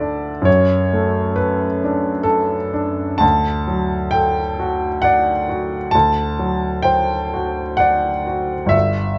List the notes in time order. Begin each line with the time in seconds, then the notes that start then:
Already playing: D2 A3 A4 D5 E5
0.00 D4
0.42 F#2 C#5
0.93 A3
1.36 A4 B4
1.84 D4
2.23 A4
2.74 D4
3.18 D2 A5
3.68 F#3
4.11 A4 G5
4.60 F#4
5.02 D5 F#5
5.49 F#4
5.91 D2 A5
6.39 F#3
6.82 C5 G5
7.34 F#4
7.77 D5 F#5
8.27 F#4
8.66 G1 E5